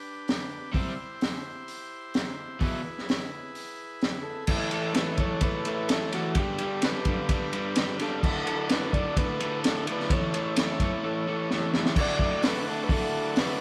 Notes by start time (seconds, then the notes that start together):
Already playing: D4 G4 B4
0.28 snare, open hi-hat
0.72 C3 G3 C4 E4 G4 C5, kick, open hi-hat
1.21 snare, open hi-hat
1.68 open hi-hat
2.14 snare, open hi-hat
2.60 E2 B2 E3 E4 G#4 B4, kick, open hi-hat
2.98 snare
3.09 snare, open hi-hat
3.55 open hi-hat
4.02 snare, open hi-hat
4.23 A4
4.46 A2 E3 A3 E4 A4 C#5, kick, crash
4.71 A2 E3 A3, ride
4.94 A2 E3 A3 B4, snare, ride
5.18 A2 E3 A3 C#5, kick, ride
5.41 A2 E3 A3 B4, kick, ride
5.65 A2 E3 A3, ride
5.88 A2 E3 A3 A4, snare, ride
6.12 A2 E3 A3 F#4, snare, ride
6.35 G2 D3 G3 D4 G4 B4, kick, ride
6.58 G2 D3 G3, ride
6.82 G2 D3 G3 B4, snare, ride
7.05 G2 D3 G3, kick, ride
7.29 G2 D3 G3, kick, ride
7.53 G2 D3 G3, ride
7.76 G2 D3 G3, snare, ride
7.99 G2 D3 G3 A4, snare, ride
8.22 D2 A2 D3 D4 F#4 A4, kick, crash
8.46 D2 A2 D3, ride
8.69 D2 A2 D3 B4, snare, ride
8.91 D2 A2 D3 D5, kick, ride
9.17 D2 A2 D3 B4, kick, ride
9.40 D2 A2 D3, ride
9.64 D2 A2 D3 A4, snare, ride
9.87 D2 A2 D3, ride
9.92 B4
10.00 snare
10.07 C#4 E4 A4, kick, ride
10.11 A2 E3 A3 C#5
10.33 A2 E3 A3, ride
10.56 A2 E3 A3 C#5, snare, ride
10.80 A2 E3 A3, kick, ride
11.03 A2 E3 A3
11.27 A2 E3 A3
11.51 A2 E3 A3, snare
11.74 A2 E3 A3, snare
11.86 snare
11.95 D2 A2 D3 A3 D4 F#4 A4, kick, crash
12.00 D5
12.19 D3 A3 F#4, kick
12.43 A2 D3 A3 F#4, snare, open hi-hat
12.48 B4
12.67 D3 A3 F#4 A4
12.84 B4
12.89 D2 A2 D3 A3 F#4 A4, kick, open hi-hat
13.36 A2 D3 A3 B4, snare, open hi-hat
13.40 F#4